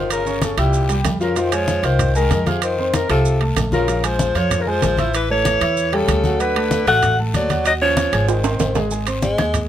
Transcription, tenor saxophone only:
0.00 0.11 D#3 medium
0.12 0.40 C#3 medium
0.42 0.57 C#3 medium
0.58 1.02 A#2 medium
1.21 1.38 C#3 medium
1.37 1.55 D#3 medium
1.53 1.85 F3 medium
1.84 2.15 D#3 medium
2.16 2.49 D#3 medium
2.47 2.63 C3 medium
2.63 2.95 D#3 medium
2.95 3.09 D#3 medium
3.10 3.43 C3 medium
3.73 4.06 C#3 medium
4.04 4.36 F3 medium
4.36 4.62 F3 medium
4.60 4.69 C#3 medium
4.68 5.14 F3 medium
5.14 5.29 E3 medium
5.31 5.95 E3 medium
5.94 6.42 C#3 medium
6.40 6.87 D3 medium
6.87 7.16 A3 loud
7.35 7.64 F#3 medium
7.66 7.73 F#3 medium
7.82 8.30 F3 medium
8.29 8.76 D#3 medium
9.23 9.67 G#3 medium

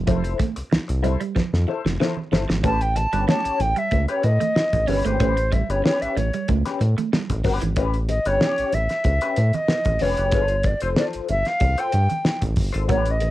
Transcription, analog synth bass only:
0.08 0.36 F1 loud
0.57 0.63 C2 soft
0.72 0.79 C2 soft
0.89 1.17 C2 medium
1.36 1.43 F2 soft
1.53 1.66 F2 medium
1.85 1.98 F1 medium
2.32 2.47 G1 medium
2.49 2.62 G#1 medium
2.64 3.07 A1 loud
3.13 3.26 G1 loud
3.45 3.51 A1 soft
3.60 3.75 A1 loud
3.92 4.07 C#2 medium
4.24 4.39 A2 medium
4.74 4.87 A1 medium
4.88 5.03 G1 medium
5.05 5.18 G#1 medium
5.21 5.63 A1 loud
5.69 5.82 G1 medium
6.02 6.08 A1 soft
6.17 6.31 A1 loud
6.49 6.64 C#2 medium
6.81 6.95 A2 medium
7.30 7.43 A1 medium
7.45 7.60 G1 medium
7.62 7.75 G#1 medium
7.77 8.19 A1 loud
8.26 8.39 G1 loud
8.59 8.64 A1 soft
8.74 8.88 A1 medium
9.05 9.20 C#2 medium
9.37 9.52 A2 loud
9.86 9.99 A1 medium
10.02 10.16 F1 medium
10.18 10.31 F#1 medium
10.33 10.75 G1 loud
10.82 10.95 F1 medium
11.15 11.21 G1 soft
11.29 11.44 G1 medium
11.61 11.76 C2 medium
11.94 12.08 G2 loud
12.43 12.56 A1 loud
12.57 12.72 G1 medium
12.75 12.88 G#1 loud
12.89 13.31 A1 loud

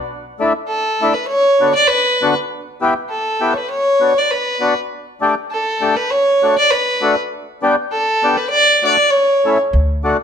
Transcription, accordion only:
0.40 0.53 A3 medium
0.40 0.53 D4 medium
0.40 0.53 E4 medium
1.02 1.14 A3 medium
1.02 1.14 D4 medium
1.02 1.14 E4 medium
1.60 1.73 D3 medium
1.60 1.73 B3 soft
1.60 1.73 D4 soft
1.60 1.73 F#4 medium
2.22 2.34 D3 medium
2.22 2.34 B3 medium
2.22 2.34 D4 medium
2.22 2.34 F#4 medium
2.81 2.94 B3 medium
2.81 2.94 E4 medium
2.81 2.94 G4 medium
3.41 3.54 B3 medium
3.41 3.54 E4 medium
3.41 3.54 G4 medium
4.00 4.13 B3 soft
4.00 4.14 D4 medium
4.00 4.14 F#4 soft
4.60 4.74 B3 medium
4.60 4.74 D4 medium
4.60 4.74 F#4 medium
5.21 5.35 A3 medium
5.21 5.35 D4 medium
5.21 5.35 G4 medium
5.81 5.95 A3 medium
5.81 5.95 D4 medium
5.81 5.95 G4 medium
6.43 6.56 A3 soft
6.43 6.56 D4 soft
6.43 6.56 F#4 medium
7.01 7.15 A3 medium
7.01 7.15 D4 medium
7.01 7.15 F#4 medium
7.62 7.76 B3 medium
7.62 7.76 D4 soft
7.62 7.76 G4 medium
8.23 8.36 B3 medium
8.23 8.36 D4 medium
8.23 8.36 G4 medium
8.83 8.96 A3 soft
8.83 8.97 D4 medium
8.83 8.96 F#4 medium
9.45 9.57 A3 medium
9.45 9.58 C#4 soft
9.45 9.58 E4 medium
10.04 10.17 A3 medium
10.04 10.17 D4 medium
10.04 10.17 F#4 medium

